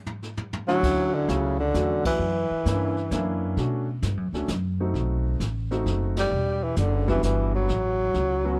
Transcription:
0.06 floor tom
0.23 snare
0.37 floor tom
0.53 floor tom
0.68 grand piano D3 F#3 A3 C#4 E4, tenor saxophone F#3, snare
0.83 upright bass D2, brush sweep, kick, snare, crash
1.14 tenor saxophone D3
1.28 upright bass C#2, tenor saxophone C#3, grand piano F#3 A3 C#4 E4, kick, snare, hi-hat pedal
1.60 tenor saxophone D3
1.74 upright bass E2, grand piano F#3 A3 C#4 F#4, kick, snare, hi-hat pedal
2.05 tenor saxophone E3, kick, ride
2.19 upright bass F#2, brush sweep
2.51 muted upright bass stroke
2.66 upright bass G2, grand piano A#3 C#4 D4 E4, kick, snare, hi-hat pedal
2.97 snare
3.11 upright bass F#2, grand piano A#3 C#4 D4 E4, kick, snare, hi-hat pedal
3.57 upright bass B2, grand piano A3 C#4 D4 F#4, brush sweep, kick, snare
4.02 upright bass G2, kick, snare, hi-hat pedal
4.17 upright bass F#2
4.33 upright bass D2, grand piano A3 C#4 D4 F#4, snare
4.48 upright bass F#2, kick, snare, hi-hat pedal
4.80 grand piano A3 C4 D#4 F#4
4.94 upright bass B1, brush sweep, kick, snare
5.40 upright bass A1, kick, snare, hi-hat pedal
5.71 grand piano A3 C4 D#4 F#4, snare
5.86 upright bass F#1, kick, snare
6.16 tenor saxophone G3, snare, ride
6.31 upright bass E1, brush sweep
6.64 tenor saxophone E3
6.76 upright bass F#1, tenor saxophone D3, kick, snare, hi-hat pedal
7.08 tenor saxophone E3, grand piano G3 B3 D4 F#4, kick, snare
7.23 upright bass G1, tenor saxophone E3, kick, snare, hi-hat pedal
7.55 tenor saxophone F#3
7.68 upright bass A1, brush sweep, kick, snare
8.14 upright bass C#2, kick, snare
8.45 grand piano F#3 B3 C#4 F#4

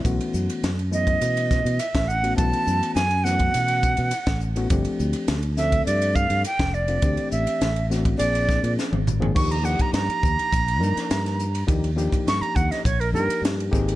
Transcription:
0.04 fingered electric bass B1, reed electric piano E3 A3 B3 C#4 F#4, kick, hi-hat pedal, ride
0.21 ride
0.33 fingered electric bass F#2, hi-hat pedal
0.49 ride
0.63 fingered electric bass F#2, snare, hi-hat pedal, ride
0.79 ride
0.91 reed electric piano E3 A3 B3 C#4 E4, flute D#5, hi-hat pedal
1.07 kick, ride
1.21 fingered electric bass B2, hi-hat pedal, ride
1.37 ride
1.51 kick, snare, hi-hat pedal
1.65 fingered electric bass B2, ride
1.79 flute E5, hi-hat pedal, ride
1.95 fingered electric bass A1, kick, snare, ride
2.08 flute F#5, hi-hat pedal
2.23 reed electric piano E3 A3 B3 C#4 F#4, ride
2.37 fingered electric bass B1, reed electric piano E3 A3 B3 C#4 F#4, flute A5, kick, hi-hat pedal, ride
2.53 ride
2.67 fingered electric bass F#2, hi-hat pedal
2.83 ride
2.95 fingered electric bass F#2, flute G#5, snare, hi-hat pedal, ride
3.11 ride
3.24 reed electric piano E3 A3 B3 C#4 F#4, flute F#5, snare, hi-hat pedal
3.39 kick, ride
3.54 fingered electric bass B2, hi-hat pedal, ride
3.68 ride
3.83 kick, hi-hat pedal
3.97 fingered electric bass B2, ride
4.11 hi-hat pedal, ride
4.26 fingered electric bass A1, kick, snare, ride
4.40 hi-hat pedal
4.56 reed electric piano E3 A3 B3 C#4 F#4, ride
4.70 fingered electric bass G1, reed electric piano F3 A3 C4 D4 G4, kick, hi-hat pedal, ride
4.85 ride
4.99 fingered electric bass D2, hi-hat pedal
5.13 ride
5.28 fingered electric bass D2, snare, hi-hat pedal, ride
5.43 ride
5.57 reed electric piano F3 A3 C4 D4 A4, flute E5, snare, hi-hat pedal
5.72 kick, ride
5.86 fingered electric bass G2, flute D5, hi-hat pedal, ride
6.02 ride
6.15 flute F5, kick, hi-hat pedal
6.30 fingered electric bass G2, ride
6.44 flute G5, hi-hat pedal, ride
6.59 fingered electric bass F1, kick, snare, ride
6.74 flute D5, hi-hat pedal
6.88 reed electric piano F3 A3 C4 D4 F4, ride
7.02 fingered electric bass D2, reed electric piano E3 A3 C4 D4 G4, kick, hi-hat pedal, ride
7.17 ride
7.31 fingered electric bass A1, flute E5, hi-hat pedal
7.47 ride
7.61 fingered electric bass A1, snare, hi-hat pedal, ride
7.76 ride
7.90 reed electric piano E3 A3 C4 D4 F#4, snare, hi-hat pedal
8.05 kick, ride
8.18 fingered electric bass A#1, reed electric piano F3 A#3 C4 D4 G#4, flute D5, hi-hat pedal, ride
8.35 ride
8.49 kick, snare, hi-hat pedal
8.63 fingered electric bass A#2, ride
8.78 snare, hi-hat pedal
8.93 fingered electric bass G#1, high tom
9.07 hi-hat pedal, mid tom
9.20 reed electric piano F3 A#3 C4 D4 G#4, floor tom
9.34 fingered electric bass D#2, reed electric piano F3 A#3 D4 D#4 G4, flute C#6, kick, crash
9.51 flute A#5, ride
9.62 reed electric piano F3 A#3 D4 D#4 G4, flute F#5, hi-hat pedal
9.79 flute A#5, kick, ride
9.93 fingered electric bass G2, flute A#5, snare, hi-hat pedal, ride
10.09 muted fingered electric bass stroke, ride
10.23 fingered electric bass D#2, kick, hi-hat pedal
10.39 ride
10.53 fingered electric bass A#1, kick, hi-hat pedal, ride
10.68 ride
10.80 fingered electric bass G2, reed electric piano F3 A#3 D4 D#4 A#4, hi-hat pedal
10.97 muted fingered electric bass stroke, snare, ride
11.11 fingered electric bass G2, snare, hi-hat pedal, ride
11.26 snare, ride
11.39 hi-hat pedal
11.55 ride
11.67 fingered electric bass D#2, reed electric piano F3 A#3 D4 D#4 G4, kick, hi-hat pedal, ride
11.84 ride
11.96 reed electric piano F3 A#3 D4 D#4 G4, hi-hat pedal
12.12 kick, ride
12.27 fingered electric bass G2, flute C#6, snare, hi-hat pedal, ride
12.41 flute A#5, muted fingered electric bass stroke, ride
12.56 fingered electric bass D#2, flute F#5, kick, hi-hat pedal
12.71 flute D#5, snare, ride
12.85 fingered electric bass A#1, flute C#5, kick, hi-hat pedal, ride
13.00 flute A#4, ride
13.13 fingered electric bass G2, reed electric piano F3 A#3 D4 D#4 G4, flute A#4, hi-hat pedal
13.28 muted fingered electric bass stroke, ride
13.42 fingered electric bass G2, snare, hi-hat pedal, ride
13.60 ride
13.71 fingered electric bass G#1, reed electric piano A#3 C4 D#4 G4 G#4, kick, hi-hat pedal
13.88 ride

